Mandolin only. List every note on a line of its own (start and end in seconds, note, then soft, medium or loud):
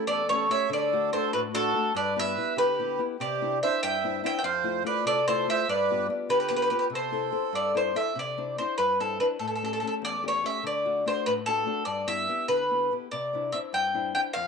0.07 0.28 D5 medium
0.29 0.50 C#5 medium
0.51 0.69 E5 medium
0.73 1.13 D5 medium
1.13 1.33 C5 medium
1.33 1.39 B4 medium
1.55 1.92 A4 medium
1.96 2.16 D5 medium
2.19 2.56 E5 loud
2.58 3.02 B4 medium
3.21 3.60 D5 medium
3.63 3.81 E5 medium
3.83 4.21 G5 loud
4.26 4.37 G5 medium
4.39 4.44 G5 medium
4.44 4.83 F5 medium
4.87 5.06 D5 medium
5.07 5.27 D5 medium
5.28 5.48 C5 medium
5.50 5.67 E5 medium
5.69 6.07 D5 medium
6.30 6.37 B4 medium
6.40 6.46 B4 medium
6.48 6.54 B4 medium
6.56 6.61 B4 medium
6.62 6.68 B4 medium
6.70 6.76 B4 medium
6.79 6.84 B4 medium
6.95 7.55 C5 medium
7.55 7.75 D5 medium
7.77 7.95 C5 medium
7.96 8.17 E5 medium
8.19 8.58 D5 medium
8.58 8.77 C5 medium
8.78 9.00 B4 medium
9.00 9.20 A4 medium
9.20 9.25 B4 medium
9.39 9.46 A4 medium
9.48 9.54 A4 soft
9.56 9.63 A4 soft
9.65 9.71 A4 medium
9.73 9.79 A4 medium
9.80 9.86 A4 soft
9.87 9.93 A4 medium
10.05 10.23 D5 medium
10.28 10.44 C#5 medium
10.46 10.63 E5 medium
10.67 11.04 D5 medium
11.08 11.26 C5 medium
11.26 11.32 B4 medium
11.46 11.83 A4 medium
11.85 12.06 D5 medium
12.08 12.45 E5 medium
12.48 12.92 B4 medium
13.11 13.54 D5 medium
13.52 13.58 E5 medium
13.74 14.12 G5 medium
14.15 14.20 G5 medium
14.33 14.47 F5 medium